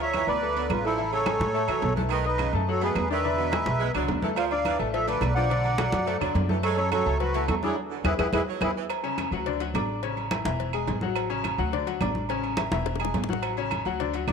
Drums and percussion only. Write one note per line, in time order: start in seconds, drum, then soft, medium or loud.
0.00 high conga soft
0.00 low agogo medium
0.14 high conga medium
0.14 low timbale medium
0.14 low agogo loud
0.14 claves medium
0.28 high conga soft
0.28 low agogo medium
0.43 high conga soft
0.56 high conga soft
0.56 low agogo medium
0.70 high conga medium
0.70 low timbale medium
0.70 low agogo loud
0.70 claves medium
0.98 high conga soft
0.98 low agogo medium
1.12 high conga soft
1.12 low agogo medium
1.26 high conga loud
1.26 low timbale medium
1.26 low agogo loud
1.26 claves medium
1.40 high conga medium
1.40 low agogo medium
1.55 high conga soft
1.68 high conga soft
1.68 low agogo loud
1.68 claves medium
1.82 high conga medium
1.82 low timbale medium
1.82 low agogo medium
1.97 high conga medium
2.10 high conga soft
2.10 low agogo loud
2.10 claves medium
2.24 high conga soft
2.24 low agogo medium
2.38 high conga medium
2.38 low timbale medium
2.38 low agogo loud
2.38 claves medium
2.53 high conga soft
2.53 low agogo medium
2.67 high conga soft
2.81 high conga soft
2.81 low agogo medium
2.95 high conga medium
2.95 low timbale medium
2.95 low agogo loud
2.95 claves medium
3.24 high conga soft
3.24 low agogo medium
3.38 high conga soft
3.38 low agogo medium
3.52 high conga loud
3.52 low timbale medium
3.52 low agogo loud
3.52 claves medium
3.66 high conga loud
3.66 low agogo medium
3.80 high conga soft
3.94 high conga soft
3.94 low agogo loud
3.94 claves medium
4.08 high conga medium
4.08 low timbale medium
4.08 low agogo medium
4.22 high conga medium
4.36 cowbell loud
4.36 high conga soft
4.36 low agogo loud
4.36 claves medium
4.51 high conga soft
4.51 low agogo medium
4.65 cowbell medium
4.65 high conga medium
4.65 low timbale medium
4.65 low agogo loud
4.65 claves medium
4.79 high conga soft
4.79 low agogo medium
4.93 cowbell loud
4.93 high conga soft
5.07 cowbell medium
5.07 high conga soft
5.07 low agogo medium
5.21 cowbell medium
5.21 high conga medium
5.21 low timbale medium
5.21 low agogo loud
5.21 claves medium
5.50 cowbell loud
5.50 high conga soft
5.50 low agogo medium
5.64 high conga soft
5.64 low agogo medium
5.78 cowbell medium
5.78 high conga loud
5.78 low timbale medium
5.78 low agogo loud
5.78 claves medium
5.92 cowbell medium
5.92 high conga medium
5.92 low agogo medium
6.07 cowbell loud
6.07 high conga soft
6.21 high conga soft
6.21 low agogo loud
6.21 claves medium
6.35 cowbell medium
6.35 high conga medium
6.35 low timbale medium
6.35 low agogo medium
6.49 high conga medium
6.63 cowbell loud
6.63 high conga soft
6.63 low agogo loud
6.63 claves medium
6.78 high conga soft
6.78 low agogo medium
6.92 cowbell medium
6.92 high conga medium
6.92 low timbale medium
6.92 low agogo loud
6.92 claves medium
7.06 high conga soft
7.06 low agogo medium
7.20 cowbell loud
7.20 high conga soft
7.34 cowbell medium
7.34 high conga soft
7.34 low agogo medium
7.48 cowbell medium
7.48 high conga medium
7.48 low timbale medium
7.48 low agogo loud
7.48 claves medium
7.63 high conga medium
8.05 cowbell loud
8.05 high conga loud
8.05 high timbale loud
8.05 claves loud
8.19 cowbell loud
8.19 high conga loud
8.19 high timbale loud
8.19 claves loud
8.33 cowbell loud
8.33 high conga loud
8.33 high timbale loud
8.33 claves loud
8.61 cowbell loud
8.61 high conga loud
8.61 high timbale loud
8.61 claves loud
8.90 cowbell loud
8.90 high conga soft
8.90 low agogo loud
8.90 claves medium
9.04 high conga soft
9.04 low agogo medium
9.18 cowbell medium
9.18 high conga medium
9.18 low timbale medium
9.18 low agogo loud
9.18 claves medium
9.32 high conga soft
9.32 low agogo medium
9.46 cowbell loud
9.46 high conga soft
9.60 cowbell medium
9.60 high conga soft
9.60 low agogo medium
9.75 cowbell medium
9.75 high conga medium
9.75 low timbale medium
9.75 low agogo loud
9.75 claves medium
10.03 cowbell loud
10.03 high conga soft
10.03 low agogo medium
10.17 high conga soft
10.17 low agogo medium
10.31 cowbell medium
10.31 high conga loud
10.31 low timbale medium
10.31 low agogo loud
10.31 claves medium
10.45 cowbell medium
10.45 high conga medium
10.45 low agogo medium
10.60 cowbell loud
10.60 high conga soft
10.73 high conga soft
10.73 low agogo loud
10.73 claves medium
10.87 cowbell medium
10.87 high conga medium
10.87 low timbale medium
10.87 low agogo medium
11.01 high conga medium
11.16 cowbell loud
11.16 high conga soft
11.16 low agogo loud
11.16 claves medium
11.30 high conga soft
11.30 low agogo medium
11.44 cowbell medium
11.44 high conga medium
11.44 low timbale medium
11.44 low agogo loud
11.44 claves medium
11.58 high conga soft
11.58 low agogo medium
11.72 cowbell loud
11.72 high conga soft
11.87 cowbell medium
11.87 high conga soft
11.87 low agogo medium
12.01 cowbell medium
12.01 high conga medium
12.01 low timbale medium
12.01 low agogo loud
12.01 claves medium
12.15 high conga medium
12.29 cowbell loud
12.29 high conga soft
12.29 low agogo medium
12.43 high conga soft
12.43 low agogo medium
12.57 cowbell medium
12.57 high conga loud
12.57 low timbale medium
12.57 low agogo loud
12.57 claves medium
12.72 cowbell medium
12.72 high conga loud
12.72 low agogo medium
12.86 cowbell loud
12.86 high bongo medium
12.86 high conga soft
12.95 high bongo medium
13.00 high conga soft
13.00 low agogo loud
13.00 claves medium
13.05 low bongo loud
13.14 cowbell medium
13.14 high conga medium
13.14 low timbale medium
13.14 low agogo medium
13.24 low bongo medium
13.29 high conga medium
13.33 low bongo loud
13.42 cowbell loud
13.42 high conga soft
13.42 low agogo loud
13.42 claves medium
13.57 high conga soft
13.57 low agogo medium
13.71 cowbell medium
13.71 high conga medium
13.71 low timbale medium
13.71 low agogo loud
13.71 claves medium
13.85 high conga soft
13.85 low agogo medium
14.00 cowbell loud
14.00 high conga soft
14.13 cowbell medium
14.13 high conga soft
14.13 low agogo medium
14.28 cowbell medium
14.28 high conga medium
14.28 low timbale medium
14.28 low agogo loud
14.28 claves medium